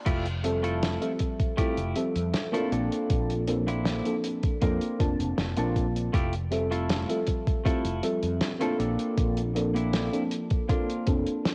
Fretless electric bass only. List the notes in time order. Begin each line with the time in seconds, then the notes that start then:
0.06 F1
1.58 muted fretless electric bass stroke
1.78 F1
2.16 F2
2.72 A#1
3.10 A#1
4.62 F2
5.00 F1
5.19 F1
5.38 F1
5.57 A#1
6.14 F1
7.66 muted fretless electric bass stroke
7.85 F1
8.23 F2
8.80 A#1
9.18 A#1
11.07 F1